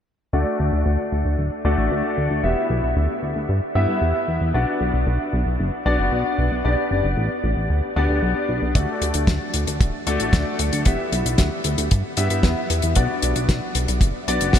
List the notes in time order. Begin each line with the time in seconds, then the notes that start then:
0.33 D2 A3 D4 F#4 D5
0.60 D2
0.73 D2
0.86 D2
1.12 D2
1.25 D2
1.39 D1
1.65 D2 A3 D4 F#4 D5
1.78 A1
1.91 D2
2.17 D2
2.31 D2
2.44 E1 B3 E4 G4 E5
2.70 B1
2.83 B1
2.96 D2
3.23 D2
3.36 D2
3.49 G2
3.75 G2 B3 E4 G4 E5
3.88 G2
4.02 E2
4.28 E2
4.41 E2
4.54 B1 B3 D4 F#4 D5
4.81 B1
4.94 B1
5.07 B1
5.33 B1
5.46 B1
5.59 F#1
5.86 B1 B3 D4 F#4 D5
5.99 F#1
6.12 B1
6.38 B1
6.51 B1
6.65 B1 B3 D4 G4 D5
6.91 F#1
7.04 F#1
7.17 A1
7.44 A1
7.57 A1
7.70 D2
7.96 D2 B3 D4 G4 D5
8.09 D2
8.22 B1
8.49 B1
8.62 B1
8.75 D2 A3 D4 F#4 D5, kick, closed hi-hat
9.01 D2, closed hi-hat
9.14 D2, closed hi-hat
9.27 D2, kick, snare, closed hi-hat
9.54 D2, closed hi-hat
9.67 D2, closed hi-hat
9.81 D1, kick, closed hi-hat
10.07 D2 A3 D4 F#4 D5, closed hi-hat
10.20 A1, closed hi-hat
10.33 D2, kick, snare, closed hi-hat
10.59 D2, closed hi-hat
10.73 D2, closed hi-hat
10.85 E1 B3 E4 G4 E5, kick, closed hi-hat
11.12 B1, closed hi-hat
11.25 B1, closed hi-hat
11.38 D2, kick, snare, closed hi-hat
11.64 D2, closed hi-hat
11.78 D2, closed hi-hat
11.91 G2, kick, closed hi-hat
12.17 G2 B3 E4 G4 E5, closed hi-hat
12.30 G2, closed hi-hat
12.43 E2, kick, snare, closed hi-hat
12.70 E2, closed hi-hat
12.82 E2, closed hi-hat
12.95 B1 B3 D4 F#4 D5, kick, closed hi-hat
13.22 B1, closed hi-hat
13.36 B1, closed hi-hat
13.49 B1, kick, snare, closed hi-hat
13.75 B1, closed hi-hat
13.88 B1, closed hi-hat
14.01 F#1, kick, closed hi-hat
14.28 B1 B3 D4 F#4 D5, closed hi-hat
14.41 F#1, closed hi-hat
14.53 B1, kick, snare, closed hi-hat